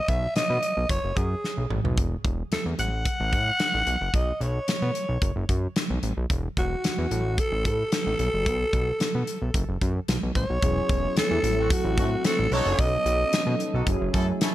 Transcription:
Already playing: alto saxophone D#5
0.08 analog synth bass B1, alto saxophone E5, kick, closed hi-hat
0.36 analog synth bass B2, alto saxophone D#5, snare, closed hi-hat
0.50 analog synth bass B2
0.63 closed hi-hat
0.77 analog synth bass B1
0.89 analog synth bass F#1, alto saxophone C#5, kick, closed hi-hat
1.04 analog synth bass F#1
1.17 analog synth bass F#2, alto saxophone G#4, kick, closed hi-hat
1.44 snare
1.57 analog synth bass B1
1.70 analog synth bass A1, mid tom
1.84 analog synth bass B1, floor tom
1.98 analog synth bass E1, kick, closed hi-hat
2.25 analog synth bass E1, kick, closed hi-hat
2.51 analog synth bass E2, alto saxophone A4, snare, closed hi-hat
2.66 analog synth bass E2
2.79 analog synth bass A1, alto saxophone F#5, closed hi-hat
3.05 kick, closed hi-hat
3.20 analog synth bass A1
3.33 analog synth bass A2, kick, closed hi-hat
3.60 snare, closed hi-hat
3.74 analog synth bass A1
3.87 analog synth bass B1, closed hi-hat
4.01 analog synth bass F#1
4.14 analog synth bass B1, alto saxophone D#5, kick, closed hi-hat
4.41 analog synth bass B1, alto saxophone C#5, closed hi-hat
4.68 analog synth bass B2, snare, closed hi-hat
4.82 analog synth bass B2
4.95 closed hi-hat
5.09 analog synth bass B1
5.22 analog synth bass F#1, kick, closed hi-hat
5.36 analog synth bass F#1
5.49 analog synth bass F#2, kick, closed hi-hat
5.76 snare, closed hi-hat
5.90 analog synth bass B1
6.03 analog synth bass A1, closed hi-hat
6.17 analog synth bass B1
6.30 analog synth bass E1, kick, closed hi-hat
6.57 analog synth bass E1, alto saxophone F#4, kick, closed hi-hat
6.84 analog synth bass E2, snare, closed hi-hat
6.98 analog synth bass E2
7.11 analog synth bass A1, closed hi-hat
7.38 alto saxophone A4, kick, closed hi-hat
7.52 analog synth bass A1
7.65 analog synth bass A2, alto saxophone A4, kick, closed hi-hat
7.92 snare, closed hi-hat
8.06 analog synth bass A1
8.19 analog synth bass B1, closed hi-hat
8.34 analog synth bass F#1
8.46 analog synth bass B1, kick, closed hi-hat
8.73 analog synth bass B1, kick, closed hi-hat
9.00 analog synth bass B2, snare, closed hi-hat
9.15 analog synth bass B2
9.27 closed hi-hat
9.42 analog synth bass B1
9.54 analog synth bass F#1, kick, closed hi-hat
9.69 analog synth bass F#1
9.81 analog synth bass F#2, kick, closed hi-hat
10.08 analog synth bass B1, snare, closed hi-hat
10.23 analog synth bass B1
10.35 analog synth bass A1, alto saxophone C#5, kick, closed hi-hat
10.50 analog synth bass B1
10.62 analog synth bass E1, analog polysynth F#3 B3 C#4 E4 G#4, kick, closed hi-hat
10.89 analog synth bass E1, kick, closed hi-hat
11.16 analog synth bass E2, alto saxophone A4, snare, closed hi-hat
11.31 analog synth bass E2
11.43 analog synth bass A1, analog polysynth F#3 A3 C4 E4 A4, closed hi-hat
11.58 horn section A3 C4 F#4
11.70 alto saxophone F#4, kick, closed hi-hat
11.84 analog synth bass A1
11.98 analog synth bass A2, horn section A3 C4 F#4, kick, closed hi-hat
12.24 horn section A3 C4 F#4, alto saxophone A4, snare, closed hi-hat
12.39 analog synth bass A1
12.51 analog synth bass B1, analog polysynth F#3 B3 C#4 D#4 A4, horn section D#4 F#4 A4, alto saxophone C#5, open hi-hat
12.66 analog synth bass F#1
12.79 analog synth bass B1, alto saxophone D#5, kick, closed hi-hat
13.05 analog synth bass B1, closed hi-hat
13.33 analog synth bass B2, snare, closed hi-hat
13.47 analog synth bass B2
13.60 closed hi-hat
13.74 analog synth bass B1, horn section D#4 F#4 A4
13.86 analog synth bass F#1, analog polysynth F#3 A3 C#4 E4 G#4, kick, closed hi-hat
14.01 analog synth bass F#1
14.14 analog synth bass F#2, horn section C#4 E4 A4, kick, closed hi-hat
14.41 horn section C#4 E4 A4, snare, closed hi-hat

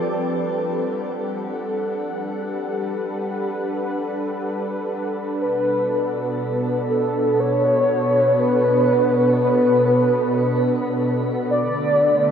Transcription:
Already playing: analog synth pad G3 D4 A4 D5, soft synth lead B4
0.59 analog synth pad F#5
1.43 soft synth lead A4
2.11 analog synth pad B4
2.43 soft synth lead G4
5.40 analog synth pad B2, soft synth lead B4
5.70 analog synth pad B3
6.90 soft synth lead A4
7.40 soft synth lead C#5
8.40 soft synth lead B4
9.44 soft synth lead B4
11.51 analog synth pad D3, soft synth lead D5
11.72 analog synth pad A3
12.03 analog synth pad F#4

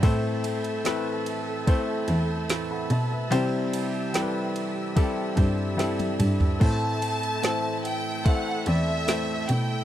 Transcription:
Already playing: string section E5 A5 E6
0.02 clean electric guitar A2 E3 A3 C4 E4, cello A2, grand piano A2 A3 C4 E4 A4 C5, string section A4, kick, ride
0.44 clean electric guitar A3 C4 E4, ride
0.64 ride
0.84 clean electric guitar A2 E3 A3 C4 E4, grand piano A3 C4 E4 A4 B4, snare, ride
1.26 ride
1.67 clean electric guitar E3 A3 C4 E4, grand piano A3 C4 E4 A4 C5, kick, ride
2.08 cello E2, clean electric guitar A3 C4 E4, ride
2.49 clean electric guitar A2 E3 A3 C4 E4, snare, ride
2.71 grand piano F#5 B5
2.90 cello B2, clean electric guitar A3 E4, grand piano E5 A5, ride
3.12 grand piano B4 E5
3.31 clean electric guitar C3 E3 G3 C4 E4, cello C3, grand piano C3 G3 C4 E4 G4 C5, string section G4 E5, ride
3.73 clean electric guitar G3 C4 E4, ride
4.14 clean electric guitar C3 E3 G3 C4 E4, grand piano G3 C4 E4 G4 A4, snare, ride
4.21 grand piano B4
4.56 ride
4.96 clean electric guitar E3 G3 C4 E4, grand piano G3 C4 E4 G4 A4, kick, ride
5.36 cello G2, grand piano G3 C4 E4 G4 C5, clean electric guitar G3 C4 E4, kick, ride
5.77 clean electric guitar C3 E3 G3 C4 E4, grand piano G3 C4 E4 G4 A4, snare, ride
5.99 high tom, ride
6.19 cello G2, clean electric guitar G3 C4 E4, mid tom, ride
6.40 floor tom
6.59 grand piano A2 A3 C4 E4 A4 C5, clean electric guitar A2 E3 A3 C4 E4, cello A2, string section A4, violin section A5, kick, crash
7.01 clean electric guitar A3 C4 E4, ride
7.23 ride
7.42 clean electric guitar A2 E3 A3 C4 E4, grand piano A3 C4 E4 A4 C5, snare, ride
7.85 violin section G5, ride
8.25 clean electric guitar E3 A3 C4 E4, grand piano A3 C4 E4 A4 C5, violin section F#5, kick, ride
8.66 cello E2, grand piano A3 C4 E4 A4 D5, clean electric guitar A3 C4 E4, violin section E5, ride
9.07 clean electric guitar A2 E3 A3 C4 E4, grand piano A3 E4 A4 C5, snare, ride
9.48 cello B2, clean electric guitar A3 E4, violin section G5, ride

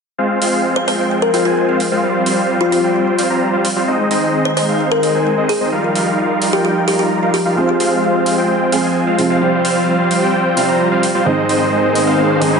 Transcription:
0.18 analog synth pad F3 C4 G#4, supersaw synth G#3 C4 F4 C5 F5
0.41 supersaw synth G#3 C4 F4 C5 F5, open hi-hat
0.76 kalimba C5
0.88 kalimba C5, open hi-hat
0.99 supersaw synth G#3 C4 F4 C5 G5
1.22 kalimba A#4
1.34 supersaw synth G#3 C4 F4 C5 F5, kalimba F4, open hi-hat
1.45 supersaw synth G#3 C4 F4 C5 G#5, kalimba F4
1.68 supersaw synth G#3 C4 F4 C5 F5
1.80 open hi-hat
1.92 supersaw synth G#3 C4 F4 C5 F5
2.03 supersaw synth G3 C4 F4 C5 F5, analog synth pad G4
2.26 supersaw synth G3 C4 F4 C5 F5, open hi-hat
2.61 kalimba F4
2.72 kalimba F4, open hi-hat
2.84 supersaw synth G3 C4 F4 C5 G5
3.18 supersaw synth G3 C4 F4 C5 F5, open hi-hat
3.30 supersaw synth G3 C4 F4 C5 A#5
3.53 supersaw synth G3 C4 F4 C5 F5
3.65 open hi-hat
3.76 supersaw synth G3 C4 F4 C5 F5
3.88 analog synth pad D#3 G#4, supersaw synth G#3 C4 D#4 C5 D#5
4.11 supersaw synth G#3 C4 D#4 C5 D#5, open hi-hat
4.45 kalimba C5
4.57 kalimba C5, open hi-hat
4.68 supersaw synth G#3 C4 D#4 C5 F5
4.92 kalimba A#4
5.03 supersaw synth G#3 C4 D#4 C5 D#5, open hi-hat
5.15 supersaw synth G#3 C4 D#4 C5 G#5
5.38 supersaw synth G#3 C4 D#4 C5 D#5
5.49 kalimba G#4, open hi-hat
5.61 supersaw synth G#3 C4 D#4 C5 D#5
5.72 analog synth pad F3 D#4 G4, supersaw synth G3 D#4 F4 A#4 F5
5.95 supersaw synth G3 D#4 F4 A#4 F5, open hi-hat
6.42 open hi-hat
6.53 supersaw synth G3 D#4 F4 A#4 G5, kalimba G4
6.65 kalimba G4
6.88 supersaw synth G3 D#4 F4 A#4 F5, kalimba G4, open hi-hat
6.99 supersaw synth G3 D#4 F4 A#4 A#5, kalimba G4
7.22 supersaw synth G3 D#4 F4 A#4 F5
7.34 kalimba G4, open hi-hat
7.45 supersaw synth G3 D#4 F4 A#4 F5
7.56 grand piano F3 G#3 C4 F4, supersaw synth G#3 C4 F4 C5 F5, analog synth pad C4 G#4
7.80 supersaw synth G#3 C4 F4 C5 F5, open hi-hat
8.26 open hi-hat
8.38 supersaw synth G#3 C4 F4 C5 G5
8.72 grand piano F3 G#3 C4 G#4, supersaw synth G#3 C4 F4 C5 F5, open hi-hat
8.84 supersaw synth G#3 C4 F4 C5 G#5
9.07 supersaw synth G#3 C4 F4 C5 F5
9.18 grand piano C3 F3 G#3 C4 F4, open hi-hat
9.30 supersaw synth G#3 C4 F4 C5 F5
9.40 grand piano C3 F3 G3 C4 F4, supersaw synth G3 C4 F4 C5 F5, analog synth pad G4
9.65 supersaw synth G3 C4 F4 C5 F5, open hi-hat
10.11 open hi-hat
10.22 supersaw synth G3 C4 F4 C5 G5
10.56 grand piano C3 F3 G3 C4 F4, supersaw synth G3 C4 F4 C5 F5, open hi-hat
10.68 supersaw synth G3 C4 F4 C5 A#5
10.92 supersaw synth G3 C4 F4 C5 F5
11.03 open hi-hat
11.15 supersaw synth G3 C4 F4 C5 F5
11.25 grand piano G#2 D#3 G#3 C4 D#4, analog synth pad D#3 C4 G#4, supersaw synth G#3 C4 D#4 C5 D#5, riser
11.49 supersaw synth G#3 C4 D#4 C5 D#5, open hi-hat
11.95 open hi-hat
12.07 supersaw synth G#3 C4 D#4 C5 F5
12.41 grand piano G#2 D#3 G#3 C4 G#4, supersaw synth G#3 C4 D#4 C5 D#5, open hi-hat
12.53 supersaw synth G#3 C4 D#4 C5 G#5

